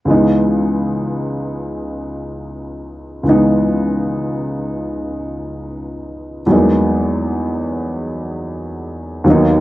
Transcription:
upright piano
0.05 C#2 E3 G#3
0.10 B3 D#4
3.23 C#2 E3 G#3
3.28 B3 D#4
6.46 E2 F#3 G3 A#3
6.50 B3 D#4
6.55 G#3
9.24 D#2 F#3 A#3
9.29 B3 D#4

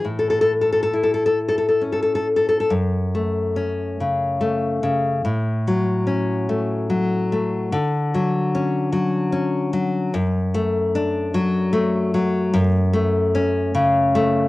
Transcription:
nylon-string guitar
0.05 A2
0.19 A4
0.30 A4
0.41 A4
0.61 A4
0.73 A4
0.83 A4
0.94 E4
1.04 A4
1.14 A4
1.26 A4
1.49 A4
1.58 A4
1.69 A4
1.81 C#4
1.93 A4
2.03 A4
2.15 A4
2.36 A4
2.49 A4
2.60 A4
2.70 F#2
3.15 A3
3.56 C#4
4.00 C#3
4.41 A3
4.83 C#3
5.25 A2
5.68 F#3
6.07 C#4
6.49 A3
6.90 F#3
7.32 A3
7.72 D3
8.15 F#3
8.55 C#4
8.93 F#3
9.32 C#4
9.73 F#3
10.14 F#2
10.54 A3
10.95 D4
11.34 F#3
11.73 A3
12.14 F#3
12.54 F#2
12.94 A3
13.35 C#4
13.75 C#3
14.15 A3

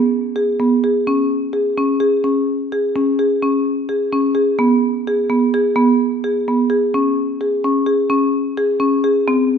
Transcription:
marimba
Already playing: B3
0.36 G#4
0.59 B3
0.84 G#4
1.07 C#4
1.53 G#4
1.77 C#4
2.00 G#4
2.24 C#4
2.72 G#4
2.96 C#4
3.19 G#4
3.42 C#4
3.89 G#4
4.13 C#4
4.35 G#4
4.59 B3
5.07 G#4
5.30 B3
5.54 G#4
5.76 B3
6.24 G#4
6.48 B3
6.70 G#4
6.94 C#4
7.41 G#4
7.64 C#4
7.86 G#4
8.10 C#4
8.57 G#4
8.80 C#4
9.04 G#4
9.28 C4

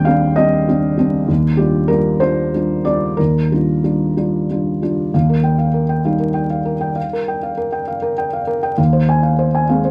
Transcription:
felt piano
Already playing: D#2 G3 C4 D4 G5
0.05 G3 C4 D4 F5
0.36 G3 C4 D4 D#5
0.68 G3 C4 D4
0.97 G3 C4 D4
1.28 D#2
1.57 G3 D4 F4 G4
1.88 G3 D4 F4 A#4
2.20 G3 D4 F4 C5
2.54 G3 D4 F4
2.85 G3 D4 F4 D5
3.17 D#2 A#4
3.52 G3 D4 F4
3.84 G3 D4 F4
4.17 G3 D4 F4
4.51 G3 D4 F4
4.82 G3 D4 F4
5.14 D#2 F5
5.30 A#4
5.44 G5
5.58 F5
5.74 A#4
5.89 G5
6.05 G3 D#4 F5
6.20 A#4
6.34 G5
6.50 F5
6.65 A#4
6.81 G5
6.96 F5
7.13 A#4
7.28 G5
7.43 F5
7.57 A#4
7.72 G5
7.88 F5
8.02 A#4
8.18 G5
8.33 F5
8.47 A#4
8.63 G5
8.78 D#2 F5
8.93 C5
9.09 G#5
9.23 F5
9.39 C5
9.55 G#5
9.69 G#3 C4 F5
9.85 C5

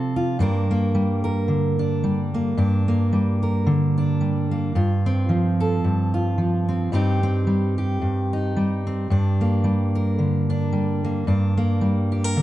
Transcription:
steel-string acoustic guitar
Already playing: C3 F3 C4 F4 A4
0.16 F4
0.39 G2 G3 A#3 D4 A#4
0.71 A#3
0.95 G3
1.24 A#4
1.48 D3
1.79 D4
2.04 G3
2.34 A#3
2.57 G2 D4
2.88 A#3
3.13 G3
3.43 A#4
3.66 D3
3.98 D4
4.21 G3
4.51 A#3
4.75 G2 F4
5.06 C4
5.29 F3
5.60 A4
5.84 G2
6.14 F4
6.38 F3
6.69 C4
6.92 G2 G3 C4 D#4 G4
7.23 C4
7.47 G3
7.78 G4
8.01 G2
8.33 D#4
8.56 G3
8.87 C4
9.10 G2 D4
9.41 A#3
9.64 G3
9.95 A#4
10.19 D3
10.50 D4
10.72 G3
11.04 A#3
11.27 G2 D4
11.57 A#3
11.81 G3
12.12 G4
12.24 A#4
12.36 D3

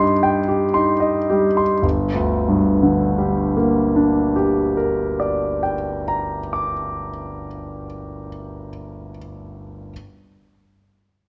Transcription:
grand piano
Already playing: G2 D#4 G4 D#5
0.00 C6
0.23 G5
0.48 G4
0.74 D#4 C6
1.00 D#5
1.30 G3 G4
1.57 C6
1.82 G1
2.14 D2
2.48 G2
2.83 D3
3.18 G3
3.57 A#3
3.96 D4
4.36 G4
4.77 A#4
5.20 D5
5.63 G5
6.08 A#5
6.53 D6

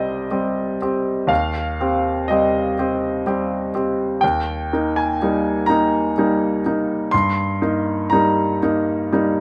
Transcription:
grand piano
Already playing: C2 G3 C4 G4 C5 D5 D#5
0.31 G3 C4 G4
0.82 C4 G4
1.27 D#2 F5
1.80 C4 G4
2.28 G3 C4 G4 D#5
2.79 C4 G4
3.26 G3 C4 G4
3.75 C4 G4
4.21 D#2 G5
4.73 A#3 D#4
4.96 G#5
5.22 G3 A#3 D#4
5.66 A#3 D#4 A#5
6.18 G3 A#3 D#4
6.66 A#3 D#4
7.11 G2 C6
7.62 A#3 D#4
8.10 G3 A#3 D#4 A#5
8.63 A#3 D#4
9.12 G3 A#3 D#4

